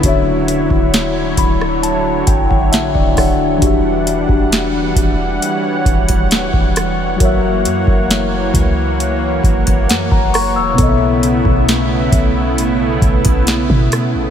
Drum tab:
HH |x-x-x-x-x-x-x-o-|x-x-x-x-x-xxx-x-|x-x-x-x-x-xxx-o-|x-x-x-x-x-xxx-x-|
SD |----o--r----o-r-|----o-------o-r-|----o-------o-r-|----o-------o-r-|
BD |o--o--o---oo-oo-|o--o--o---oo-o--|o--o--o---oo-o--|o--o--o---oo-o--|